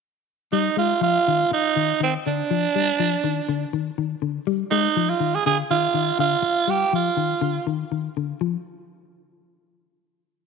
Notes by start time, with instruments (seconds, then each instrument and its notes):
0.52 clean electric guitar G3, tenor saxophone D#4
0.77 clean electric guitar G#3, tenor saxophone F4
1.01 clean electric guitar F3, tenor saxophone F4
1.28 clean electric guitar D#3
1.51 tenor saxophone D#4, muted clean electric guitar stroke
1.76 clean electric guitar D#3
2.00 clean electric guitar D#3, tenor saxophone C4
2.26 clean electric guitar D3, tenor saxophone D4
2.51 clean electric guitar F3
2.75 clean electric guitar G3
3.00 clean electric guitar F3
3.24 clean electric guitar D#3
3.49 clean electric guitar D3
3.73 clean electric guitar D#3
3.98 clean electric guitar D#3
4.22 clean electric guitar D3
4.47 clean electric guitar G3
4.71 clean electric guitar G#3, tenor saxophone D#4
4.97 clean electric guitar F3
5.09 tenor saxophone F4
5.20 clean electric guitar D#3
5.35 tenor saxophone G#4
5.46 clean electric guitar D3, tenor saxophone G#4
5.71 clean electric guitar D#3, tenor saxophone F4
5.94 clean electric guitar D#3
6.19 clean electric guitar D3, tenor saxophone F4
6.42 muted clean electric guitar stroke
6.67 clean electric guitar G3, tenor saxophone G4
6.93 clean electric guitar F3, tenor saxophone F4
7.17 clean electric guitar D#3
7.41 clean electric guitar D3
7.67 clean electric guitar D#3
7.92 clean electric guitar D#3
8.17 clean electric guitar D3
8.41 clean electric guitar F3